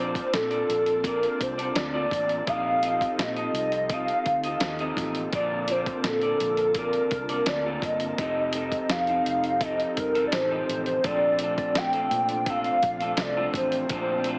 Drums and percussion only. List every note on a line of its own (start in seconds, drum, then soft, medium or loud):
0.15 kick medium
0.15 closed hi-hat soft
0.34 snare loud
0.34 closed hi-hat medium
0.51 closed hi-hat soft
0.70 closed hi-hat medium
0.86 closed hi-hat soft
1.04 kick medium
1.04 closed hi-hat medium
1.23 closed hi-hat soft
1.41 kick medium
1.41 closed hi-hat medium
1.59 closed hi-hat soft
1.76 snare loud
1.76 closed hi-hat medium
2.11 kick medium
2.11 closed hi-hat medium
2.29 closed hi-hat soft
2.47 kick loud
2.47 closed hi-hat medium
2.83 closed hi-hat medium
3.01 kick medium
3.01 closed hi-hat soft
3.19 snare loud
3.19 closed hi-hat medium
3.37 closed hi-hat soft
3.55 closed hi-hat medium
3.72 closed hi-hat soft
3.90 kick medium
3.90 closed hi-hat loud
4.08 closed hi-hat soft
4.26 kick medium
4.26 closed hi-hat medium
4.44 closed hi-hat soft
4.60 snare loud
4.60 closed hi-hat medium
4.79 closed hi-hat soft
4.97 kick medium
4.97 snare soft
4.97 closed hi-hat medium
5.15 closed hi-hat soft
5.33 kick loud
5.33 closed hi-hat medium
5.68 closed hi-hat medium
5.86 kick medium
5.86 closed hi-hat soft
6.04 snare loud
6.04 closed hi-hat medium
6.21 closed hi-hat soft
6.40 closed hi-hat medium
6.57 closed hi-hat soft
6.75 kick medium
6.75 closed hi-hat loud
6.93 closed hi-hat soft
7.11 kick medium
7.11 closed hi-hat medium
7.29 closed hi-hat soft
7.46 snare loud
7.46 closed hi-hat medium
7.82 kick medium
7.82 closed hi-hat medium
8.00 closed hi-hat soft
8.18 kick loud
8.18 closed hi-hat medium
8.53 closed hi-hat medium
8.72 kick medium
8.72 closed hi-hat soft
8.89 snare loud
8.89 closed hi-hat medium
9.07 closed hi-hat soft
9.26 closed hi-hat medium
9.44 closed hi-hat soft
9.61 kick medium
9.61 closed hi-hat loud
9.80 closed hi-hat soft
9.97 kick medium
9.97 closed hi-hat medium
10.15 closed hi-hat soft
10.32 snare loud
10.32 closed hi-hat medium
10.69 closed hi-hat medium
10.86 closed hi-hat soft
11.04 kick loud
11.04 closed hi-hat medium
11.39 closed hi-hat medium
11.58 kick medium
11.58 closed hi-hat soft
11.75 snare loud
11.75 closed hi-hat medium
11.93 closed hi-hat soft
12.11 closed hi-hat medium
12.29 closed hi-hat soft
12.46 kick medium
12.46 closed hi-hat medium
12.64 closed hi-hat soft
12.83 kick medium
12.83 closed hi-hat medium
13.00 closed hi-hat medium
13.17 snare loud
13.17 closed hi-hat medium
13.54 kick medium
13.54 closed hi-hat medium
13.72 closed hi-hat soft
13.89 kick loud
13.89 closed hi-hat medium
14.24 closed hi-hat medium